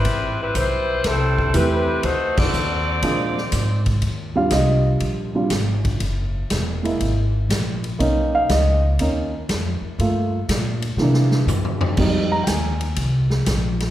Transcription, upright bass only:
0.05 0.53 A1 medium
0.55 1.03 B1 medium
1.04 1.53 C2 medium
1.54 2.02 E2 medium
2.03 2.52 D2 medium
2.53 3.02 D#2 medium
3.02 3.51 A#2 medium
3.52 4.01 G#2 medium
4.02 4.50 D#2 medium
4.51 5.00 C2 medium
5.01 5.49 A#1 medium
5.50 5.99 G#1 medium
6.00 6.49 F#1 medium
6.50 6.99 E1 medium
7.00 7.48 G#1 medium
7.49 7.98 A#1 medium
7.99 8.48 B1 medium
8.49 8.98 C#2 medium
8.99 9.47 D#2 medium
9.49 9.81 F2 loud
9.81 muted upright bass stroke soft
9.99 10.47 G2 medium
10.48 10.96 A#2 medium
10.97 11.45 C3 medium
11.47 11.95 G2 medium
11.97 12.45 F2 medium
12.47 12.95 D#2 medium
12.96 13.45 C2 medium
13.47 13.90 A#1 loud

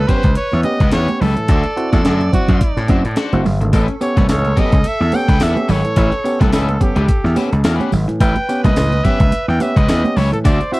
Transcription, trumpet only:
0.08 0.36 C5 loud
0.37 0.63 C#5 loud
0.64 0.90 D#5 medium
0.93 1.23 C#5 loud
1.21 1.92 A4 loud
1.93 2.30 A4 medium
2.34 2.86 F#4 medium
3.74 3.86 A4 medium
4.02 4.28 C#5 medium
4.30 4.61 C#5 medium
4.59 4.89 D#5 loud
4.88 5.17 E5 loud
5.15 5.45 G5 loud
5.43 5.72 E5 loud
5.71 6.41 C#5 loud
6.42 6.84 A4 medium
6.83 7.38 G4 medium
8.21 8.61 G5 loud
8.64 9.06 D#5 loud
9.05 9.48 E5 loud
9.48 9.63 G5 medium
9.62 9.79 E5 medium
9.77 10.18 D#5 loud
10.17 10.32 C#5 medium
10.33 10.38 A4 medium
10.45 10.71 D5 medium
10.73 10.80 E5 loud

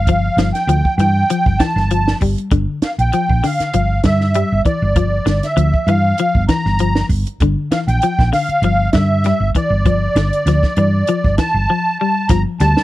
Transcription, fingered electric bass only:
0.00 0.28 G1 medium
0.37 0.50 G1 medium
0.67 0.81 D2 medium
0.85 muted fingered electric bass stroke soft
0.98 1.23 G2 loud
1.46 1.57 G1 medium
1.76 2.12 G1 medium
2.21 2.34 G1 medium
2.51 2.65 G1 medium
2.82 muted fingered electric bass stroke soft
2.98 3.10 A#1 medium
3.29 3.40 A#1 medium
3.60 muted fingered electric bass stroke soft
3.74 3.99 G1 medium
4.04 4.42 G2 medium
4.52 4.63 G1 medium
4.65 muted fingered electric bass stroke soft
4.82 5.18 G1 medium
5.26 5.40 G1 medium
5.57 5.70 D2 medium
5.73 muted fingered electric bass stroke soft
5.87 6.12 G2 loud
6.35 6.46 G1 medium
6.66 7.02 G1 loud
7.09 7.23 G1 loud
7.40 7.54 G1 loud
7.71 muted fingered electric bass stroke soft
7.88 7.99 A#1 medium
8.19 8.30 A#1 medium
8.49 muted fingered electric bass stroke soft
8.62 8.87 G1 medium
8.93 9.32 G2 medium
9.40 9.52 G1 medium
9.55 muted fingered electric bass stroke soft
9.70 10.07 G1 medium
10.15 10.29 G1 medium
10.46 10.60 D2 medium
10.77 11.02 G2 medium
11.24 11.36 G1 medium
11.54 11.66 G1 medium
12.29 12.43 G1 loud
12.60 12.74 D2 medium

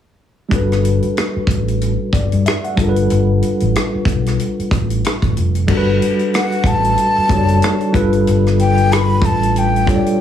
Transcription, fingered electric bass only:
0.52 0.98 G1 medium
1.04 muted fingered electric bass stroke soft
1.36 muted fingered electric bass stroke soft
1.48 1.95 A1 medium
2.14 2.30 G1 medium
2.33 2.45 G2 medium
2.78 3.08 G1 medium
3.11 3.40 G1 medium
3.62 3.74 A1 medium
3.95 muted fingered electric bass stroke soft
4.06 4.36 B1 medium
4.59 muted fingered electric bass stroke soft
4.72 5.01 A1 medium
5.23 5.35 A1 medium
5.38 5.66 F1 medium
5.69 5.98 G1 medium
6.64 6.94 A1 medium
7.17 muted fingered electric bass stroke soft
7.30 7.59 F#1 medium
7.95 8.24 G1 medium
8.28 9.20 G1 medium
9.22 10.01 A1 medium

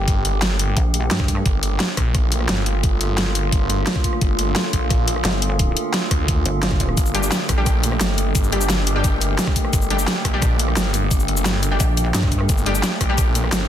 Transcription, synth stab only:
7.14 7.56 G3 medium
7.14 7.56 D4 medium
7.14 7.56 G4 medium
7.58 7.66 G3 medium
7.58 7.66 D4 medium
7.58 7.66 G4 medium
8.52 8.66 G3 medium
8.52 8.66 D4 medium
8.52 8.66 G4 medium
8.96 9.04 G3 medium
8.96 9.04 D4 medium
8.96 9.04 G4 medium
9.90 10.31 G3 medium
9.90 10.31 D4 medium
9.90 10.31 G4 medium
10.33 10.42 G3 medium
10.33 10.42 D4 medium
10.33 10.42 G4 medium
11.71 11.80 G3 medium
11.71 11.80 D4 medium
11.71 11.80 G4 medium
12.66 13.07 G3 medium
12.66 13.07 D4 medium
12.66 13.07 G4 loud
13.09 13.18 G3 medium
13.09 13.18 D4 medium
13.09 13.18 G4 medium

